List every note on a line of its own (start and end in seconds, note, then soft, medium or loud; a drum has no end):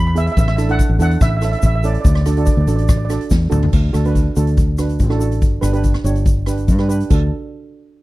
0.00 0.28 E2 loud
0.07 0.13 B5 medium
0.14 0.36 B3 medium
0.14 0.36 E4 medium
0.14 0.36 G#4 medium
0.14 0.24 E5 loud
0.14 closed hi-hat medium
0.14 shaker medium
0.27 0.31 E5 medium
0.27 closed hi-hat medium
0.32 0.39 E5 medium
0.37 0.79 A1 loud
0.37 0.47 E5 medium
0.37 kick loud
0.37 closed hi-hat medium
0.37 shaker loud
0.48 0.54 E5 medium
0.48 cross-stick medium
0.56 0.64 D4 medium
0.56 0.64 E4 medium
0.56 0.64 A4 medium
0.56 0.62 E5 medium
0.56 cross-stick medium
0.56 closed hi-hat medium
0.56 shaker medium
0.69 0.87 D4 medium
0.69 0.87 E4 medium
0.69 0.87 A4 medium
0.69 1.01 F#5 loud
0.69 closed hi-hat medium
0.79 kick medium
0.79 closed hi-hat medium
0.79 shaker loud
0.89 0.97 A1 medium
0.99 1.16 E2 medium
0.99 1.20 D4 medium
0.99 1.20 E4 medium
0.99 1.20 A4 medium
0.99 1.11 F#5 loud
0.99 closed hi-hat medium
0.99 shaker medium
1.11 closed hi-hat medium
1.21 1.54 A1 loud
1.21 1.28 E5 loud
1.21 kick loud
1.21 cross-stick medium
1.21 closed hi-hat medium
1.21 shaker medium
1.29 1.36 E5 medium
1.37 1.43 E5 medium
1.41 1.67 C#4 medium
1.41 1.67 E4 medium
1.41 1.67 A4 medium
1.41 1.51 E5 medium
1.41 cross-stick medium
1.41 closed hi-hat medium
1.41 shaker medium
1.52 1.58 E5 medium
1.52 closed hi-hat medium
1.59 1.65 E5 medium
1.59 kick medium
1.59 closed hi-hat medium
1.59 shaker loud
1.63 1.96 A1 loud
1.63 1.73 E5 medium
1.76 1.81 E5 medium
1.83 2.05 C#4 medium
1.83 2.05 E4 medium
1.83 2.05 A4 medium
1.83 1.92 D5 medium
1.83 closed hi-hat medium
1.83 shaker medium
1.93 1.99 D5 medium
1.93 closed hi-hat medium
2.01 2.47 D2 loud
2.01 2.06 D5 medium
2.01 kick loud
2.01 closed hi-hat medium
2.05 2.14 D5 medium
2.05 shaker medium
2.15 2.20 D5 medium
2.15 cross-stick medium
2.21 2.27 D5 medium
2.26 2.32 D4 medium
2.26 2.32 F#4 medium
2.26 2.32 A4 medium
2.26 2.35 D5 medium
2.26 cross-stick medium
2.26 closed hi-hat medium
2.26 shaker medium
2.37 2.56 D4 medium
2.37 2.56 F#4 medium
2.37 2.56 A4 medium
2.37 2.44 D5 soft
2.37 closed hi-hat medium
2.46 2.52 D5 medium
2.46 kick medium
2.46 closed hi-hat medium
2.46 shaker medium
2.54 2.65 D2 medium
2.54 2.59 D5 medium
2.60 2.66 D5 medium
2.67 3.17 A1 medium
2.67 2.93 D4 medium
2.67 2.93 F#4 medium
2.67 2.93 A4 medium
2.67 2.74 D5 soft
2.67 closed hi-hat medium
2.67 shaker medium
2.76 2.81 D5 medium
2.76 closed hi-hat medium
2.82 2.88 D5 medium
2.89 2.96 D5 medium
2.89 kick loud
2.89 cross-stick medium
2.89 closed hi-hat medium
2.89 shaker loud
2.97 3.04 D5 medium
3.05 3.11 D5 medium
3.10 3.35 D4 medium
3.10 3.35 F#4 medium
3.10 3.35 A4 medium
3.10 3.19 D5 medium
3.10 cross-stick medium
3.10 closed hi-hat medium
3.10 shaker medium
3.21 closed hi-hat medium
3.30 3.50 E2 medium
3.30 kick loud
3.30 snare medium
3.30 shaker loud
3.50 3.71 D2 medium
3.50 3.72 D4 medium
3.50 3.72 F#4 medium
3.50 3.72 A4 medium
3.50 mid tom medium
3.50 shaker medium
3.63 floor tom medium
3.73 3.90 D2 medium
3.73 kick loud
3.73 crash medium
3.73 shaker medium
3.93 4.28 D2 medium
3.93 4.00 D4 medium
3.93 4.00 F#4 medium
3.93 4.00 A4 medium
3.93 cross-stick medium
3.93 closed hi-hat medium
3.93 shaker medium
4.05 4.24 D4 medium
4.05 4.24 F#4 medium
4.05 4.24 B4 loud
4.05 closed hi-hat medium
4.05 shaker soft
4.15 kick medium
4.15 closed hi-hat medium
4.15 shaker medium
4.36 5.01 D2 medium
4.36 4.62 D4 medium
4.36 4.62 F#4 medium
4.36 4.62 A4 medium
4.36 closed hi-hat medium
4.36 shaker medium
4.47 closed hi-hat medium
4.47 shaker soft
4.57 kick loud
4.57 closed hi-hat medium
4.57 shaker medium
4.78 4.98 D4 medium
4.78 4.98 F#4 medium
4.78 4.98 B4 medium
4.78 cross-stick medium
4.78 closed hi-hat medium
4.78 shaker medium
4.89 closed hi-hat medium
4.89 shaker soft
4.99 5.42 A1 medium
4.99 kick medium
4.99 closed hi-hat medium
4.99 shaker medium
5.10 5.16 D4 medium
5.10 5.16 F#4 medium
5.10 5.16 A4 medium
5.10 cross-stick medium
5.19 5.41 D4 medium
5.19 5.41 F#4 medium
5.19 5.41 A4 medium
5.19 closed hi-hat medium
5.19 shaker medium
5.32 closed hi-hat medium
5.32 shaker soft
5.42 5.58 G1 loud
5.42 kick loud
5.42 closed hi-hat medium
5.42 shaker medium
5.61 5.96 G1 medium
5.61 5.69 D4 medium
5.61 5.69 G4 medium
5.61 5.69 B4 loud
5.61 cross-stick medium
5.61 closed hi-hat medium
5.61 shaker loud
5.73 5.92 D4 medium
5.73 5.92 G4 medium
5.73 5.92 B4 loud
5.73 closed hi-hat medium
5.73 shaker soft
5.84 kick medium
5.84 closed hi-hat medium
5.84 shaker medium
5.94 cross-stick medium
6.04 6.70 G1 medium
6.04 6.30 D4 medium
6.04 6.31 G4 medium
6.04 6.30 C#5 medium
6.04 closed hi-hat medium
6.04 shaker medium
6.15 closed hi-hat medium
6.15 shaker soft
6.25 kick loud
6.25 closed hi-hat medium
6.25 shaker medium
6.46 6.66 D4 medium
6.46 6.66 G4 medium
6.46 6.66 B4 medium
6.46 cross-stick medium
6.46 closed hi-hat medium
6.46 shaker medium
6.57 closed hi-hat medium
6.57 shaker soft
6.68 7.02 G2 medium
6.68 kick medium
6.68 closed hi-hat medium
6.68 shaker medium
6.79 6.85 D4 medium
6.79 6.85 G4 medium
6.79 6.85 B4 medium
6.79 cross-stick medium
6.88 7.09 D4 medium
6.88 7.10 G4 medium
6.88 7.10 B4 loud
6.88 closed hi-hat medium
6.88 shaker loud
7.00 closed hi-hat medium
7.00 shaker soft
7.10 7.30 D2 medium
7.10 7.30 D4 medium
7.10 7.30 F#4 medium
7.10 7.30 A4 medium
7.10 kick loud
7.10 crash medium
7.10 shaker medium